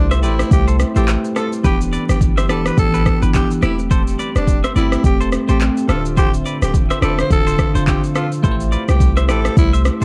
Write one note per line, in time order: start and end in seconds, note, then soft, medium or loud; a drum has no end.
0.00 0.24 C2 medium
0.00 0.15 A3 loud
0.00 1.60 A3 medium
0.00 1.60 C4 medium
0.00 0.16 E4 medium
0.00 0.16 G4 medium
0.00 5.85 G4 loud
0.00 0.16 C5 loud
0.11 0.19 C5 medium
0.11 0.19 E5 medium
0.11 cross-stick medium
0.11 shaker medium
0.22 0.44 A1 medium
0.22 0.87 A3 medium
0.22 0.88 E4 medium
0.22 0.48 E4 medium
0.22 0.88 G4 medium
0.22 0.34 B4 medium
0.22 0.88 C5 medium
0.22 0.34 D5 medium
0.22 shaker medium
0.39 cross-stick loud
0.39 shaker medium
0.51 0.84 C2 loud
0.51 0.66 G4 medium
0.51 kick loud
0.51 shaker medium
0.68 0.76 A4 medium
0.68 0.75 C5 medium
0.68 shaker medium
0.80 cross-stick medium
0.80 shaker medium
0.95 1.17 A1 medium
0.95 1.58 A3 medium
0.95 1.58 E4 medium
0.95 1.59 G4 medium
0.95 1.07 G4 medium
0.95 1.04 A4 medium
0.95 1.02 B4 medium
0.95 1.04 C5 medium
0.95 shaker medium
1.04 1.62 C5 medium
1.08 clap medium
1.08 shaker medium
1.24 shaker soft
1.36 1.47 F4 medium
1.36 1.47 A4 medium
1.36 1.51 A4 medium
1.36 cross-stick medium
1.36 shaker medium
1.53 shaker medium
1.63 1.97 E1 loud
1.63 2.42 E3 medium
1.63 3.61 E3 medium
1.63 2.42 B3 medium
1.63 3.61 B3 medium
1.63 3.61 D4 medium
1.63 2.42 D4 medium
1.63 1.76 G4 medium
1.63 1.79 G4 loud
1.63 2.43 G4 medium
1.63 1.75 B4 loud
1.63 kick loud
1.63 shaker medium
1.81 shaker medium
1.93 2.04 B4 medium
1.93 2.03 D5 medium
1.93 shaker medium
2.09 2.51 G1 loud
2.09 2.20 G4 medium
2.09 cross-stick medium
2.09 shaker medium
2.21 kick loud
2.21 shaker medium
2.37 2.46 C5 medium
2.37 2.45 E5 medium
2.37 cross-stick loud
2.37 shaker medium
2.48 2.70 E1 medium
2.48 3.14 E3 medium
2.48 3.14 B3 medium
2.48 3.14 D4 medium
2.48 3.15 G4 medium
2.48 2.64 A4 medium
2.48 2.61 B4 medium
2.48 2.60 D5 medium
2.48 cross-stick loud
2.48 shaker medium
2.66 2.77 B4 medium
2.66 cross-stick loud
2.66 shaker medium
2.78 3.10 A1 loud
2.78 3.20 A4 loud
2.78 kick loud
2.78 shaker medium
2.94 3.02 G4 medium
2.94 3.02 B4 medium
2.94 shaker medium
3.06 kick loud
3.06 cross-stick loud
3.06 shaker medium
3.21 3.43 G1 medium
3.21 3.62 E3 medium
3.21 3.62 B3 medium
3.21 3.63 D4 medium
3.21 3.31 G4 medium
3.21 3.63 G4 medium
3.21 3.30 B4 medium
3.21 shaker medium
3.34 3.49 G4 medium
3.34 kick medium
3.34 clap loud
3.34 shaker medium
3.51 shaker soft
3.61 4.16 E1 loud
3.61 4.66 A3 medium
3.61 10.04 A3 medium
3.61 4.66 C4 medium
3.61 10.04 C4 medium
3.61 3.74 E4 medium
3.61 3.77 E4 medium
3.61 3.73 G4 medium
3.61 4.67 G4 medium
3.61 cross-stick medium
3.61 shaker medium
3.79 shaker medium
3.91 4.02 A4 medium
3.91 4.02 C5 loud
3.91 kick loud
3.91 shaker medium
4.07 shaker medium
4.19 4.30 B4 medium
4.19 4.30 D5 medium
4.19 shaker medium
4.36 4.65 E1 medium
4.36 4.60 D4 medium
4.36 cross-stick medium
4.36 shaker medium
4.47 kick loud
4.47 shaker medium
4.64 4.72 C5 medium
4.64 4.72 E5 medium
4.64 cross-stick medium
4.64 shaker medium
4.74 4.96 G1 medium
4.74 5.40 A3 medium
4.74 5.41 C4 medium
4.74 5.01 E4 medium
4.74 5.41 G4 medium
4.74 4.87 B4 medium
4.74 4.86 D5 medium
4.74 shaker medium
4.92 cross-stick loud
4.92 shaker medium
5.04 5.37 E1 loud
5.04 5.19 G4 medium
5.04 kick loud
5.04 shaker medium
5.21 5.29 A4 medium
5.21 5.28 C5 medium
5.21 shaker medium
5.32 cross-stick medium
5.32 shaker medium
5.47 5.70 A1 medium
5.47 5.88 A3 medium
5.47 5.89 C4 medium
5.47 5.60 G4 medium
5.47 5.90 G4 medium
5.47 5.57 A4 medium
5.47 5.57 C5 medium
5.47 shaker medium
5.61 clap loud
5.61 shaker medium
5.77 shaker soft
5.88 6.42 D1 loud
5.88 6.92 D3 medium
5.88 8.41 D3 medium
5.88 6.93 D4 medium
5.88 8.41 F4 loud
5.88 6.93 F4 medium
5.88 6.00 F4 medium
5.88 6.00 A4 medium
5.88 6.04 A4 medium
5.88 6.93 C5 medium
5.88 cross-stick medium
5.88 shaker medium
6.05 shaker medium
6.17 6.32 G4 loud
6.17 6.29 A4 medium
6.17 6.28 C5 loud
6.17 kick loud
6.17 shaker medium
6.34 shaker medium
6.46 6.57 B4 medium
6.46 6.56 D5 medium
6.46 shaker medium
6.62 6.91 D1 medium
6.62 6.73 G4 medium
6.62 cross-stick medium
6.62 shaker medium
6.74 kick loud
6.74 shaker medium
6.90 6.99 C5 medium
6.90 6.98 E5 medium
6.90 cross-stick loud
6.90 shaker medium
7.01 7.23 E1 medium
7.01 7.66 D3 medium
7.01 7.67 D4 medium
7.01 7.67 F4 medium
7.01 7.17 A4 medium
7.01 7.13 B4 medium
7.01 7.68 C5 medium
7.01 7.13 D5 medium
7.01 cross-stick loud
7.01 shaker medium
7.19 7.30 C5 medium
7.19 cross-stick loud
7.19 shaker medium
7.31 7.63 D1 medium
7.31 7.73 A4 loud
7.31 kick loud
7.31 shaker medium
7.47 7.55 A4 medium
7.47 7.55 C5 medium
7.47 shaker medium
7.59 kick loud
7.59 cross-stick loud
7.59 shaker medium
7.74 7.96 F1 medium
7.74 8.37 D3 medium
7.74 8.38 D4 medium
7.74 8.38 F4 medium
7.74 7.84 A4 medium
7.74 7.83 C5 medium
7.74 8.38 C5 medium
7.74 shaker medium
7.87 8.02 G4 medium
7.87 kick medium
7.87 clap loud
7.87 shaker medium
8.04 shaker soft
8.15 8.27 F4 medium
8.15 8.30 F4 medium
8.15 8.26 A4 medium
8.15 cross-stick loud
8.15 shaker medium
8.32 shaker medium
8.42 8.76 A1 loud
8.42 9.21 A3 loud
8.42 9.21 E4 medium
8.42 10.04 G4 loud
8.42 9.22 G4 medium
8.42 8.55 A4 medium
8.42 8.52 B4 medium
8.42 8.54 C5 loud
8.42 kick loud
8.42 shaker medium
8.51 9.25 C5 loud
8.60 shaker medium
8.72 8.83 B4 medium
8.72 8.83 D5 medium
8.72 shaker medium
8.88 9.30 C2 medium
8.88 9.13 G4 medium
8.88 cross-stick medium
8.88 shaker medium
9.00 kick loud
9.00 shaker medium
9.17 9.25 C5 medium
9.17 9.25 E5 medium
9.17 cross-stick medium
9.17 shaker medium
9.27 9.49 A1 medium
9.27 9.93 A3 medium
9.27 9.93 E4 medium
9.27 9.94 G4 medium
9.27 9.54 A4 medium
9.27 9.40 B4 medium
9.27 9.94 C5 medium
9.27 9.39 D5 medium
9.27 cross-stick loud
9.27 shaker medium
9.45 cross-stick loud
9.45 shaker medium
9.57 9.90 C2 loud
9.57 9.72 E4 loud
9.57 kick loud
9.57 shaker medium
9.73 9.82 C5 medium
9.73 9.81 E5 medium
9.73 shaker medium
9.85 cross-stick loud
9.85 shaker medium
10.00 10.04 A3 medium
10.00 10.04 E4 medium